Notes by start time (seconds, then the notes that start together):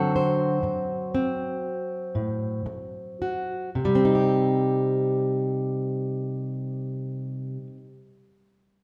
Already playing: D3 F#3 C4 F#4 A4
0.16 C5
0.63 muted steel-string acoustic guitar stroke
1.15 C4
2.15 A2
2.66 muted steel-string acoustic guitar stroke
3.22 F#4
3.75 C3
3.85 G3
3.95 C4
4.05 D#4
4.15 G4